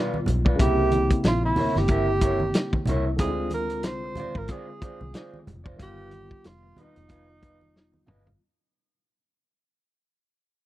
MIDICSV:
0, 0, Header, 1, 8, 480
1, 0, Start_track
1, 0, Tempo, 650759
1, 443, Time_signature, 4, 2, 24, 8
1, 7857, End_track
2, 0, Start_track
2, 0, Title_t, "Clean electric guitar"
2, 0, Program_c, 0, 27
2, 0, Note_on_c, 0, 65, 65
2, 0, Note_on_c, 0, 71, 72
2, 0, Note_on_c, 0, 74, 78
2, 112, Note_off_c, 0, 65, 0
2, 117, Note_off_c, 0, 71, 0
2, 120, Note_off_c, 0, 74, 0
2, 332, Note_on_c, 0, 74, 52
2, 338, Note_on_c, 0, 71, 50
2, 346, Note_on_c, 0, 65, 39
2, 430, Note_off_c, 0, 65, 0
2, 430, Note_off_c, 0, 74, 0
2, 433, Note_off_c, 0, 71, 0
2, 433, Note_on_c, 0, 64, 67
2, 440, Note_on_c, 0, 70, 71
2, 446, Note_on_c, 0, 76, 75
2, 661, Note_off_c, 0, 64, 0
2, 665, Note_off_c, 0, 70, 0
2, 668, Note_off_c, 0, 76, 0
2, 1154, Note_on_c, 0, 64, 74
2, 1162, Note_on_c, 0, 70, 76
2, 1166, Note_on_c, 0, 73, 77
2, 1291, Note_off_c, 0, 73, 0
2, 1304, Note_off_c, 0, 70, 0
2, 1315, Note_off_c, 0, 64, 0
2, 1395, Note_on_c, 0, 64, 69
2, 1405, Note_on_c, 0, 70, 78
2, 1412, Note_on_c, 0, 76, 78
2, 1529, Note_off_c, 0, 76, 0
2, 1531, Note_off_c, 0, 70, 0
2, 1556, Note_off_c, 0, 64, 0
2, 1637, Note_on_c, 0, 64, 59
2, 1645, Note_on_c, 0, 70, 59
2, 1651, Note_on_c, 0, 73, 63
2, 1768, Note_off_c, 0, 64, 0
2, 1772, Note_off_c, 0, 70, 0
2, 1773, Note_off_c, 0, 73, 0
2, 2121, Note_on_c, 0, 64, 74
2, 2128, Note_on_c, 0, 70, 79
2, 2133, Note_on_c, 0, 73, 90
2, 2249, Note_off_c, 0, 73, 0
2, 2258, Note_off_c, 0, 70, 0
2, 2278, Note_off_c, 0, 64, 0
2, 2356, Note_on_c, 0, 65, 76
2, 2363, Note_on_c, 0, 72, 75
2, 2369, Note_on_c, 0, 74, 82
2, 2582, Note_off_c, 0, 65, 0
2, 2586, Note_off_c, 0, 72, 0
2, 2589, Note_off_c, 0, 74, 0
2, 3078, Note_on_c, 0, 65, 72
2, 3084, Note_on_c, 0, 72, 64
2, 3092, Note_on_c, 0, 74, 83
2, 3210, Note_off_c, 0, 74, 0
2, 3217, Note_off_c, 0, 72, 0
2, 3236, Note_off_c, 0, 65, 0
2, 3314, Note_on_c, 0, 65, 72
2, 3325, Note_on_c, 0, 72, 73
2, 3330, Note_on_c, 0, 74, 87
2, 3445, Note_off_c, 0, 74, 0
2, 3453, Note_off_c, 0, 72, 0
2, 3474, Note_off_c, 0, 65, 0
2, 3553, Note_on_c, 0, 65, 57
2, 3561, Note_on_c, 0, 72, 56
2, 3569, Note_on_c, 0, 74, 63
2, 3683, Note_off_c, 0, 74, 0
2, 3685, Note_off_c, 0, 65, 0
2, 3689, Note_off_c, 0, 72, 0
2, 3790, Note_on_c, 0, 65, 57
2, 3800, Note_on_c, 0, 72, 66
2, 3806, Note_on_c, 0, 74, 83
2, 3952, Note_off_c, 0, 65, 0
2, 3957, Note_off_c, 0, 72, 0
2, 3960, Note_off_c, 0, 74, 0
2, 4160, Note_on_c, 0, 74, 60
2, 4169, Note_on_c, 0, 72, 54
2, 4176, Note_on_c, 0, 65, 50
2, 4257, Note_off_c, 0, 65, 0
2, 4263, Note_off_c, 0, 74, 0
2, 4266, Note_on_c, 0, 65, 66
2, 4267, Note_off_c, 0, 72, 0
2, 4271, Note_on_c, 0, 71, 76
2, 4280, Note_on_c, 0, 77, 76
2, 4496, Note_off_c, 0, 65, 0
2, 4499, Note_off_c, 0, 71, 0
2, 4503, Note_off_c, 0, 77, 0
2, 4988, Note_on_c, 0, 65, 57
2, 4996, Note_on_c, 0, 71, 68
2, 5002, Note_on_c, 0, 75, 69
2, 5119, Note_off_c, 0, 75, 0
2, 5125, Note_off_c, 0, 71, 0
2, 5151, Note_off_c, 0, 65, 0
2, 5224, Note_on_c, 0, 65, 66
2, 5233, Note_on_c, 0, 71, 70
2, 5240, Note_on_c, 0, 77, 72
2, 5362, Note_off_c, 0, 77, 0
2, 5366, Note_off_c, 0, 71, 0
2, 5389, Note_off_c, 0, 65, 0
2, 5464, Note_on_c, 0, 65, 48
2, 5472, Note_on_c, 0, 71, 51
2, 5478, Note_on_c, 0, 75, 56
2, 5595, Note_off_c, 0, 75, 0
2, 5600, Note_off_c, 0, 65, 0
2, 5604, Note_off_c, 0, 71, 0
2, 5949, Note_on_c, 0, 65, 67
2, 5956, Note_on_c, 0, 71, 78
2, 5960, Note_on_c, 0, 75, 67
2, 6082, Note_off_c, 0, 75, 0
2, 6091, Note_off_c, 0, 71, 0
2, 6112, Note_off_c, 0, 65, 0
2, 7857, End_track
3, 0, Start_track
3, 0, Title_t, "Tenor saxophone"
3, 0, Program_c, 1, 66
3, 0, Note_on_c, 1, 65, 90
3, 211, Note_off_c, 1, 65, 0
3, 452, Note_on_c, 1, 67, 109
3, 897, Note_off_c, 1, 67, 0
3, 940, Note_on_c, 1, 65, 90
3, 1061, Note_off_c, 1, 65, 0
3, 1072, Note_on_c, 1, 64, 83
3, 1313, Note_on_c, 1, 67, 93
3, 1324, Note_off_c, 1, 64, 0
3, 2127, Note_off_c, 1, 67, 0
3, 2362, Note_on_c, 1, 68, 99
3, 2584, Note_off_c, 1, 68, 0
3, 2611, Note_on_c, 1, 70, 102
3, 2844, Note_on_c, 1, 72, 116
3, 2855, Note_off_c, 1, 70, 0
3, 3229, Note_on_c, 1, 70, 91
3, 3240, Note_off_c, 1, 72, 0
3, 3326, Note_on_c, 1, 68, 80
3, 3337, Note_off_c, 1, 70, 0
3, 4043, Note_off_c, 1, 68, 0
3, 4297, Note_on_c, 1, 67, 117
3, 4769, Note_on_c, 1, 65, 96
3, 4780, Note_off_c, 1, 67, 0
3, 5019, Note_on_c, 1, 63, 97
3, 5030, Note_off_c, 1, 65, 0
3, 5969, Note_off_c, 1, 63, 0
3, 7857, End_track
4, 0, Start_track
4, 0, Title_t, "Tine electric piano"
4, 0, Program_c, 2, 4
4, 0, Control_c, 2, 64, 127
4, 0, Note_on_c, 2, 47, 62
4, 0, Note_on_c, 2, 55, 50
4, 0, Note_on_c, 2, 59, 52
4, 0, Note_on_c, 2, 65, 61
4, 401, Note_off_c, 2, 47, 0
4, 409, Note_off_c, 2, 55, 0
4, 410, Note_on_c, 2, 49, 62
4, 418, Note_off_c, 2, 59, 0
4, 426, Note_off_c, 2, 65, 0
4, 431, Note_on_c, 2, 58, 56
4, 448, Note_on_c, 2, 60, 53
4, 453, Control_c, 2, 64, 0
4, 466, Note_on_c, 2, 64, 67
4, 588, Control_c, 2, 64, 127
4, 2315, Note_off_c, 2, 49, 0
4, 2325, Note_off_c, 2, 58, 0
4, 2333, Note_off_c, 2, 60, 0
4, 2334, Note_on_c, 2, 50, 61
4, 2342, Note_off_c, 2, 64, 0
4, 2351, Note_on_c, 2, 56, 53
4, 2368, Control_c, 2, 64, 0
4, 2371, Note_on_c, 2, 60, 53
4, 2387, Note_on_c, 2, 64, 56
4, 2429, Note_off_c, 2, 64, 0
4, 2437, Note_on_c, 2, 65, 64
4, 2481, Control_c, 2, 64, 127
4, 4237, Note_off_c, 2, 50, 0
4, 4245, Note_off_c, 2, 56, 0
4, 4248, Note_on_c, 2, 51, 56
4, 4255, Note_off_c, 2, 60, 0
4, 4267, Note_on_c, 2, 55, 54
4, 4284, Note_on_c, 2, 59, 57
4, 4288, Note_off_c, 2, 65, 0
4, 4288, Control_c, 2, 64, 0
4, 4302, Note_on_c, 2, 65, 65
4, 4401, Control_c, 2, 64, 127
4, 6154, Note_off_c, 2, 51, 0
4, 6164, Note_off_c, 2, 55, 0
4, 6172, Note_off_c, 2, 59, 0
4, 6181, Note_off_c, 2, 65, 0
4, 6210, Control_c, 2, 64, 0
4, 7857, End_track
5, 0, Start_track
5, 0, Title_t, "Fingered electric bass"
5, 0, Program_c, 3, 33
5, 202, Note_on_c, 3, 35, 82
5, 399, Note_off_c, 3, 35, 0
5, 438, Note_on_c, 3, 36, 95
5, 833, Note_off_c, 3, 36, 0
5, 916, Note_on_c, 3, 34, 84
5, 1115, Note_off_c, 3, 34, 0
5, 1297, Note_on_c, 3, 31, 80
5, 1850, Note_off_c, 3, 31, 0
5, 2113, Note_on_c, 3, 36, 76
5, 2353, Note_off_c, 3, 36, 0
5, 2353, Note_on_c, 3, 38, 100
5, 2837, Note_off_c, 3, 38, 0
5, 2837, Note_on_c, 3, 36, 89
5, 3035, Note_off_c, 3, 36, 0
5, 3211, Note_on_c, 3, 32, 84
5, 3297, Note_off_c, 3, 32, 0
5, 3694, Note_on_c, 3, 36, 83
5, 3779, Note_off_c, 3, 36, 0
5, 4036, Note_on_c, 3, 29, 87
5, 4234, Note_off_c, 3, 29, 0
5, 4274, Note_on_c, 3, 31, 104
5, 4670, Note_off_c, 3, 31, 0
5, 4756, Note_on_c, 3, 29, 88
5, 4954, Note_off_c, 3, 29, 0
5, 5140, Note_on_c, 3, 29, 75
5, 5931, Note_off_c, 3, 29, 0
5, 5958, Note_on_c, 3, 31, 82
5, 6155, Note_off_c, 3, 31, 0
5, 7857, End_track
6, 0, Start_track
6, 0, Title_t, "Muted clean electric guitar strokes"
6, 192, Note_on_c, 9, 29, 36
6, 266, Note_off_c, 9, 29, 0
6, 816, Note_on_c, 9, 29, 37
6, 890, Note_off_c, 9, 29, 0
6, 911, Note_on_c, 9, 29, 36
6, 985, Note_off_c, 9, 29, 0
6, 1057, Note_on_c, 9, 29, 35
6, 1131, Note_off_c, 9, 29, 0
6, 1300, Note_on_c, 9, 29, 34
6, 1374, Note_off_c, 9, 29, 0
6, 1532, Note_on_c, 9, 29, 37
6, 1606, Note_off_c, 9, 29, 0
6, 1782, Note_on_c, 9, 29, 43
6, 1855, Note_off_c, 9, 29, 0
6, 1881, Note_on_c, 9, 29, 36
6, 1955, Note_off_c, 9, 29, 0
6, 2022, Note_on_c, 9, 29, 38
6, 2096, Note_off_c, 9, 29, 0
6, 2257, Note_on_c, 9, 29, 45
6, 2331, Note_off_c, 9, 29, 0
6, 2736, Note_on_c, 9, 29, 43
6, 2810, Note_off_c, 9, 29, 0
6, 2844, Note_on_c, 9, 29, 39
6, 2917, Note_off_c, 9, 29, 0
6, 2982, Note_on_c, 9, 29, 40
6, 3055, Note_off_c, 9, 29, 0
6, 3218, Note_on_c, 9, 29, 43
6, 3292, Note_off_c, 9, 29, 0
6, 3454, Note_on_c, 9, 29, 41
6, 3527, Note_off_c, 9, 29, 0
6, 3692, Note_on_c, 9, 29, 41
6, 3766, Note_off_c, 9, 29, 0
6, 4034, Note_on_c, 9, 29, 35
6, 4108, Note_off_c, 9, 29, 0
6, 4652, Note_on_c, 9, 29, 30
6, 4725, Note_off_c, 9, 29, 0
6, 4756, Note_on_c, 9, 29, 34
6, 4830, Note_off_c, 9, 29, 0
6, 4890, Note_on_c, 9, 29, 41
6, 4964, Note_off_c, 9, 29, 0
6, 5128, Note_on_c, 9, 29, 46
6, 5202, Note_off_c, 9, 29, 0
6, 5365, Note_on_c, 9, 29, 41
6, 5439, Note_off_c, 9, 29, 0
6, 5604, Note_on_c, 9, 29, 30
6, 5677, Note_off_c, 9, 29, 0
6, 5844, Note_on_c, 9, 29, 28
6, 5918, Note_off_c, 9, 29, 0
6, 6091, Note_on_c, 9, 29, 39
6, 6165, Note_off_c, 9, 29, 0
6, 7857, End_track
7, 0, Start_track
7, 0, Title_t, "Muted fingered electric bass strokes"
7, 2011, Note_on_c, 9, 29, 40
7, 2085, Note_off_c, 9, 29, 0
7, 3554, Note_on_c, 9, 29, 44
7, 3628, Note_off_c, 9, 29, 0
7, 7857, End_track
8, 0, Start_track
8, 0, Title_t, "Drums"
8, 101, Note_on_c, 9, 63, 64
8, 175, Note_off_c, 9, 63, 0
8, 194, Note_on_c, 9, 62, 33
8, 194, Note_on_c, 9, 64, 74
8, 202, Note_on_c, 9, 42, 69
8, 268, Note_off_c, 9, 62, 0
8, 268, Note_off_c, 9, 64, 0
8, 276, Note_off_c, 9, 42, 0
8, 338, Note_on_c, 9, 36, 92
8, 411, Note_off_c, 9, 36, 0
8, 438, Note_on_c, 9, 36, 110
8, 439, Note_on_c, 9, 64, 64
8, 440, Note_on_c, 9, 42, 93
8, 512, Note_off_c, 9, 36, 0
8, 513, Note_off_c, 9, 64, 0
8, 514, Note_off_c, 9, 42, 0
8, 674, Note_on_c, 9, 62, 36
8, 674, Note_on_c, 9, 63, 56
8, 675, Note_on_c, 9, 42, 74
8, 748, Note_off_c, 9, 62, 0
8, 748, Note_off_c, 9, 63, 0
8, 749, Note_off_c, 9, 42, 0
8, 814, Note_on_c, 9, 42, 56
8, 815, Note_on_c, 9, 36, 84
8, 888, Note_off_c, 9, 42, 0
8, 889, Note_off_c, 9, 36, 0
8, 912, Note_on_c, 9, 42, 84
8, 917, Note_on_c, 9, 62, 31
8, 921, Note_on_c, 9, 38, 108
8, 985, Note_off_c, 9, 42, 0
8, 991, Note_off_c, 9, 62, 0
8, 995, Note_off_c, 9, 38, 0
8, 1152, Note_on_c, 9, 62, 35
8, 1152, Note_on_c, 9, 63, 69
8, 1152, Note_on_c, 9, 64, 72
8, 1157, Note_on_c, 9, 46, 48
8, 1226, Note_off_c, 9, 62, 0
8, 1226, Note_off_c, 9, 63, 0
8, 1226, Note_off_c, 9, 64, 0
8, 1231, Note_off_c, 9, 46, 0
8, 1293, Note_on_c, 9, 63, 77
8, 1296, Note_on_c, 9, 38, 34
8, 1367, Note_off_c, 9, 63, 0
8, 1370, Note_off_c, 9, 38, 0
8, 1385, Note_on_c, 9, 42, 70
8, 1392, Note_on_c, 9, 36, 85
8, 1458, Note_off_c, 9, 42, 0
8, 1466, Note_off_c, 9, 36, 0
8, 1630, Note_on_c, 9, 42, 68
8, 1634, Note_on_c, 9, 36, 88
8, 1641, Note_on_c, 9, 62, 33
8, 1704, Note_off_c, 9, 42, 0
8, 1707, Note_off_c, 9, 36, 0
8, 1715, Note_off_c, 9, 62, 0
8, 1769, Note_on_c, 9, 63, 70
8, 1843, Note_off_c, 9, 63, 0
8, 1872, Note_on_c, 9, 42, 98
8, 1882, Note_on_c, 9, 38, 110
8, 1946, Note_off_c, 9, 42, 0
8, 1955, Note_off_c, 9, 38, 0
8, 2013, Note_on_c, 9, 36, 76
8, 2016, Note_on_c, 9, 63, 60
8, 2087, Note_off_c, 9, 36, 0
8, 2090, Note_off_c, 9, 63, 0
8, 2107, Note_on_c, 9, 62, 38
8, 2107, Note_on_c, 9, 64, 73
8, 2117, Note_on_c, 9, 42, 69
8, 2180, Note_off_c, 9, 62, 0
8, 2180, Note_off_c, 9, 64, 0
8, 2191, Note_off_c, 9, 42, 0
8, 2348, Note_on_c, 9, 62, 28
8, 2348, Note_on_c, 9, 64, 56
8, 2350, Note_on_c, 9, 42, 91
8, 2353, Note_on_c, 9, 36, 106
8, 2422, Note_off_c, 9, 62, 0
8, 2422, Note_off_c, 9, 64, 0
8, 2423, Note_off_c, 9, 42, 0
8, 2427, Note_off_c, 9, 36, 0
8, 2582, Note_on_c, 9, 62, 33
8, 2582, Note_on_c, 9, 63, 52
8, 2585, Note_on_c, 9, 42, 68
8, 2656, Note_off_c, 9, 62, 0
8, 2656, Note_off_c, 9, 63, 0
8, 2659, Note_off_c, 9, 42, 0
8, 2726, Note_on_c, 9, 42, 56
8, 2799, Note_off_c, 9, 42, 0
8, 2824, Note_on_c, 9, 42, 85
8, 2830, Note_on_c, 9, 62, 31
8, 2833, Note_on_c, 9, 38, 103
8, 2898, Note_off_c, 9, 42, 0
8, 2903, Note_off_c, 9, 62, 0
8, 2907, Note_off_c, 9, 38, 0
8, 3064, Note_on_c, 9, 62, 33
8, 3064, Note_on_c, 9, 63, 75
8, 3064, Note_on_c, 9, 64, 68
8, 3072, Note_on_c, 9, 42, 60
8, 3138, Note_off_c, 9, 62, 0
8, 3138, Note_off_c, 9, 63, 0
8, 3138, Note_off_c, 9, 64, 0
8, 3145, Note_off_c, 9, 42, 0
8, 3209, Note_on_c, 9, 36, 79
8, 3212, Note_on_c, 9, 63, 77
8, 3283, Note_off_c, 9, 36, 0
8, 3286, Note_off_c, 9, 63, 0
8, 3301, Note_on_c, 9, 42, 76
8, 3311, Note_on_c, 9, 36, 87
8, 3314, Note_on_c, 9, 62, 30
8, 3375, Note_off_c, 9, 42, 0
8, 3384, Note_off_c, 9, 36, 0
8, 3387, Note_off_c, 9, 62, 0
8, 3553, Note_on_c, 9, 42, 64
8, 3554, Note_on_c, 9, 36, 93
8, 3564, Note_on_c, 9, 62, 34
8, 3627, Note_off_c, 9, 36, 0
8, 3627, Note_off_c, 9, 42, 0
8, 3637, Note_off_c, 9, 62, 0
8, 3693, Note_on_c, 9, 63, 68
8, 3767, Note_off_c, 9, 63, 0
8, 3789, Note_on_c, 9, 42, 100
8, 3797, Note_on_c, 9, 62, 25
8, 3798, Note_on_c, 9, 38, 115
8, 3863, Note_off_c, 9, 42, 0
8, 3870, Note_off_c, 9, 62, 0
8, 3872, Note_off_c, 9, 38, 0
8, 3936, Note_on_c, 9, 63, 63
8, 4010, Note_off_c, 9, 63, 0
8, 4037, Note_on_c, 9, 62, 36
8, 4037, Note_on_c, 9, 64, 81
8, 4040, Note_on_c, 9, 42, 67
8, 4110, Note_off_c, 9, 62, 0
8, 4110, Note_off_c, 9, 64, 0
8, 4114, Note_off_c, 9, 42, 0
8, 4172, Note_on_c, 9, 36, 99
8, 4246, Note_off_c, 9, 36, 0
8, 4274, Note_on_c, 9, 36, 114
8, 4274, Note_on_c, 9, 42, 93
8, 4275, Note_on_c, 9, 62, 28
8, 4275, Note_on_c, 9, 64, 56
8, 4347, Note_off_c, 9, 42, 0
8, 4348, Note_off_c, 9, 36, 0
8, 4349, Note_off_c, 9, 62, 0
8, 4349, Note_off_c, 9, 64, 0
8, 4507, Note_on_c, 9, 42, 71
8, 4513, Note_on_c, 9, 62, 37
8, 4513, Note_on_c, 9, 63, 59
8, 4581, Note_off_c, 9, 42, 0
8, 4586, Note_off_c, 9, 62, 0
8, 4586, Note_off_c, 9, 63, 0
8, 4654, Note_on_c, 9, 36, 87
8, 4727, Note_off_c, 9, 36, 0
8, 4751, Note_on_c, 9, 42, 84
8, 4760, Note_on_c, 9, 38, 98
8, 4825, Note_off_c, 9, 42, 0
8, 4834, Note_off_c, 9, 38, 0
8, 4991, Note_on_c, 9, 63, 71
8, 4991, Note_on_c, 9, 64, 70
8, 4998, Note_on_c, 9, 42, 59
8, 5065, Note_off_c, 9, 63, 0
8, 5065, Note_off_c, 9, 64, 0
8, 5072, Note_off_c, 9, 42, 0
8, 5133, Note_on_c, 9, 42, 50
8, 5137, Note_on_c, 9, 63, 73
8, 5206, Note_off_c, 9, 42, 0
8, 5211, Note_off_c, 9, 63, 0
8, 5227, Note_on_c, 9, 42, 76
8, 5235, Note_on_c, 9, 36, 83
8, 5301, Note_off_c, 9, 42, 0
8, 5309, Note_off_c, 9, 36, 0
8, 5478, Note_on_c, 9, 36, 93
8, 5478, Note_on_c, 9, 42, 63
8, 5552, Note_off_c, 9, 36, 0
8, 5552, Note_off_c, 9, 42, 0
8, 5616, Note_on_c, 9, 63, 62
8, 5689, Note_off_c, 9, 63, 0
8, 5725, Note_on_c, 9, 38, 59
8, 5798, Note_off_c, 9, 38, 0
8, 5852, Note_on_c, 9, 63, 58
8, 5926, Note_off_c, 9, 63, 0
8, 5953, Note_on_c, 9, 64, 72
8, 5960, Note_on_c, 9, 45, 99
8, 6027, Note_off_c, 9, 64, 0
8, 6034, Note_off_c, 9, 45, 0
8, 6097, Note_on_c, 9, 43, 79
8, 6171, Note_off_c, 9, 43, 0
8, 7857, End_track
0, 0, End_of_file